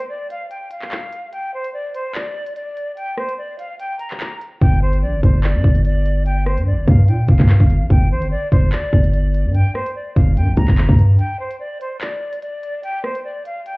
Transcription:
0.00 closed hi-hat
0.09 D5
0.30 F5, closed hi-hat
0.51 G5, closed hi-hat
0.71 F5, closed hi-hat
0.82 clap
0.92 clap, closed hi-hat
1.13 closed hi-hat
1.32 G5, closed hi-hat
1.54 C5
1.64 closed hi-hat
1.74 D5
1.94 C5, closed hi-hat
2.15 D5, clap, closed hi-hat
2.46 closed hi-hat
2.56 D5, closed hi-hat
2.77 closed hi-hat
2.96 G5, closed hi-hat
3.18 C5, cross-stick
3.29 closed hi-hat
3.38 D5
3.59 F5, closed hi-hat
3.79 G5, closed hi-hat
3.99 A#5, closed hi-hat
4.11 clap
4.20 clap, closed hi-hat
4.41 closed hi-hat
4.61 G1 G5, kick, closed hi-hat
4.82 C5
4.93 closed hi-hat
5.02 A#1 D5
5.13 G1
5.23 G1 C5, kick, closed hi-hat
5.44 D5, clap, closed hi-hat
5.55 G2
5.64 G1, kick
5.75 closed hi-hat
5.85 D5, closed hi-hat
6.06 closed hi-hat
6.26 G5, closed hi-hat
6.46 C5, cross-stick
6.57 G2, closed hi-hat
6.67 D5
6.72 G1
6.88 G2 F5, kick, closed hi-hat
7.08 A#2 G5, closed hi-hat
7.28 G1 F5, kick, closed hi-hat
7.39 G2, kick, clap
7.49 clap, closed hi-hat
7.60 G1, kick
7.70 closed hi-hat
7.81 A1
7.90 G1 G5, kick, closed hi-hat
8.11 A1 C5
8.22 G1, closed hi-hat
8.31 D5
8.52 G1 C5, kick, closed hi-hat
8.72 D5, clap, closed hi-hat
8.93 G1, kick
9.04 closed hi-hat
9.13 D5, closed hi-hat
9.34 closed hi-hat
9.45 G2
9.54 G5, closed hi-hat
9.75 C5, cross-stick
9.86 closed hi-hat
9.96 D5
10.16 G1 F5, kick, closed hi-hat
10.37 G2 G5, closed hi-hat
10.48 G1
10.57 D2 A#5, kick, closed hi-hat
10.68 G1, kick, clap
10.78 clap, closed hi-hat
10.89 G2, kick
10.99 closed hi-hat
11.19 G5, closed hi-hat
11.40 C5
11.51 closed hi-hat
11.60 D5
11.81 C5, closed hi-hat
12.01 D5, clap, closed hi-hat
12.33 closed hi-hat
12.42 D5, closed hi-hat
12.63 closed hi-hat
12.83 G5, closed hi-hat
13.04 C5, cross-stick
13.15 closed hi-hat
13.24 D5
13.45 F5, closed hi-hat
13.66 G5, closed hi-hat

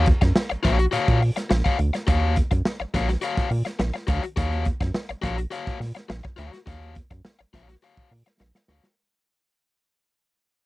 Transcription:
Already playing: D#2
0.06 kick, closed hi-hat
0.21 F#2, muted overdriven electric guitar stroke, kick, snare, closed hi-hat
0.36 snare
0.50 A#1, muted overdriven electric guitar stroke, closed hi-hat
0.63 A#1 F#4 C#5 F5, kick, closed hi-hat
0.79 muted overdriven electric guitar stroke, closed hi-hat
0.91 A#2 F#4 C#5 F5, closed hi-hat
1.08 A#2, kick, closed hi-hat
1.21 muted overdriven electric guitar stroke, open hi-hat
1.36 muted overdriven electric guitar stroke, snare, closed hi-hat
1.50 A#1, muted overdriven electric guitar stroke, snare
1.65 F#4 C#5 F5, kick, closed hi-hat
1.78 D2, muted overdriven electric guitar stroke, closed hi-hat
1.94 muted overdriven electric guitar stroke, snare, closed hi-hat
2.07 D#2 F#4 C#5 F5, kick, closed hi-hat
2.36 kick, closed hi-hat
2.51 F#2, muted overdriven electric guitar stroke, kick, closed hi-hat
2.65 snare
2.80 A#1, muted overdriven electric guitar stroke
2.94 A#1 F#4 C#5 F5, kick, snare, closed hi-hat
3.09 muted overdriven electric guitar stroke, snare, closed hi-hat
3.22 F#4 C#5 F5, closed hi-hat
3.37 A#2, kick, snare, closed hi-hat
3.50 A#2, muted overdriven electric guitar stroke, open hi-hat
3.65 muted overdriven electric guitar stroke, snare, closed hi-hat
3.79 A#1, muted overdriven electric guitar stroke, snare
3.94 muted overdriven electric guitar stroke, snare, closed hi-hat
4.07 D2 F#4 C#5 F5, kick, closed hi-hat
4.23 muted overdriven electric guitar stroke, closed hi-hat
4.36 D#2 F#4 C#5 F5, kick, closed hi-hat
4.52 closed hi-hat
4.65 kick, closed hi-hat
4.80 F#2, muted overdriven electric guitar stroke, kick, snare, closed hi-hat
4.94 snare
5.09 A#1, muted overdriven electric guitar stroke, closed hi-hat
5.22 A#1 F#4 C#5 F5, kick, closed hi-hat
5.38 muted overdriven electric guitar stroke, closed hi-hat
5.51 F#4 C#5 F5, closed hi-hat
5.67 A#2, kick, closed hi-hat
5.80 A#2, muted overdriven electric guitar stroke, snare, open hi-hat
5.95 muted overdriven electric guitar stroke, snare, closed hi-hat
6.09 A#1, muted overdriven electric guitar stroke, snare
6.24 muted overdriven electric guitar stroke, kick
6.36 D2 F#4 C#5 F5, closed hi-hat
6.52 muted overdriven electric guitar stroke, snare, closed hi-hat
6.66 D#2 F#4 C#5 F5, kick, closed hi-hat
6.82 closed hi-hat
6.95 kick, closed hi-hat
7.11 F#2, muted overdriven electric guitar stroke, kick, closed hi-hat
7.25 snare
7.39 A#1, muted overdriven electric guitar stroke, closed hi-hat
7.53 A#1 F#4 C#5 F5, kick, snare, closed hi-hat
7.69 muted overdriven electric guitar stroke, snare, closed hi-hat
7.82 F#4 C#5 F5, closed hi-hat
7.97 A#2, kick
8.11 A#2, muted overdriven electric guitar stroke, open hi-hat
8.27 muted overdriven electric guitar stroke, snare, closed hi-hat
8.40 A#1, muted overdriven electric guitar stroke, snare
8.55 muted overdriven electric guitar stroke, snare
8.68 D2 F#4 C#5 F5, snare
8.84 muted overdriven electric guitar stroke, snare

